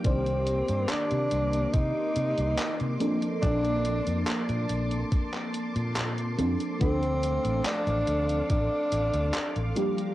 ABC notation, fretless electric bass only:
X:1
M:4/4
L:1/16
Q:1/4=71
K:Dphr
V:1 name="Fretless electric bass" clef=bass
C,,3 G,, z C, C,,2 C, z C, C,, z C, z2 | B,,,3 F,, z B,, B,,,2 z3 B,,3 F,, z | D,,3 A,,, z A,,, D,,2 A,,, z A,,, D,, z A,,, z2 |]